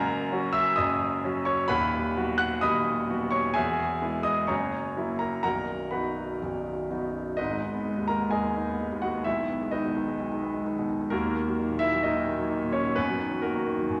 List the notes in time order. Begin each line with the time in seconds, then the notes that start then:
Already playing: F#1 F#2 A#4 F#5 A#5
0.32 F#3 C#4 F#4
0.53 E5 E6
0.76 F#1 F#2 D#5 D#6
1.24 F#3 C#4 F#4
1.45 C#5 C#6
1.68 D#1 D#2 B4 F#5 B5
2.17 F#3 B3 F#4
2.38 F#5 F#6
2.61 D#1 D#2 D#5 B5 D#6
3.09 F#3 B3 F#4
3.30 C#5 C#6
3.54 E1 E2 G#4 E5 G#5
4.02 G#3 B3 E4
4.23 D#5 D#6
4.47 F#1 F#2 C#5 A#5 C#6
4.96 F#3 A#3 E4
5.19 A#4 A#5
5.43 B0 B1 A#4 F#5 A#5
5.91 F#3 B3 D#4 B4 F#5 B5
6.42 B0 B1
6.90 F#3 B3 D#4
7.37 G#1 D#4 B4 D#5
7.50 G#3
7.62 D#4
7.73 B3
7.86 G#3
7.98 D#2
8.08 G#3 A#4 A#5
8.21 B3
8.31 D#2 G#4 D#5 G#5
8.44 G#3
8.57 D#4
8.69 B3
8.80 G#3
8.92 D#2
9.02 G#3 F#4 F#5
9.15 B3
9.24 B1 E4 E5
9.39 D#3
9.50 B3
9.62 G#3
9.71 D#3 D#4 B4 D#5
9.85 B2
9.97 D#3
10.08 G#3
10.20 B1
10.32 D#3
10.43 B3
10.54 G#3
10.66 D#3
10.78 B2
10.90 D#3
11.01 G#3
11.10 D#2 A#3 F#4 A#4
11.24 D#3
11.36 A#3
11.47 F#3
11.59 D#3
11.70 A#2
11.79 D#3 E4 E5
11.93 F#3
12.03 A#2 D#4 A#4 D#5
12.16 D#3
12.27 A#3
12.39 F#3
12.50 D#3
12.63 A#2
12.72 D#3 C#4 C#5
12.85 F#3
12.96 F#2 B3 B4
13.09 F#3
13.20 D#3
13.31 F#3
13.42 D#3 A#3 F#4 A#4
13.56 F#3
13.67 D#3
13.78 F#3
13.89 F#2